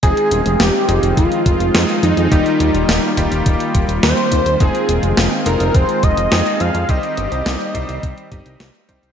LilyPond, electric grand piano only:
\new Staff \with { instrumentName = "Electric grand piano" } { \time 4/4 \key f \minor \tempo 4 = 105 <aes c' ees' f' aes'>4. <aes c' ees' f' aes'>4. <aes c' ees' f' aes'>4 | <g bes ees' f' g'>4. <g bes ees' f' g'>2~ <g bes ees' f' g'>8 | <aes c' ees' f' aes'>4. <aes c' ees' f' aes'>4. <aes c' ees' f' aes'>4 | <g c' ees' g' c''>4. <g c' ees' g' c''>4 <g c' ees' g' ees''>4 <g c' ees' g' c''>8 | }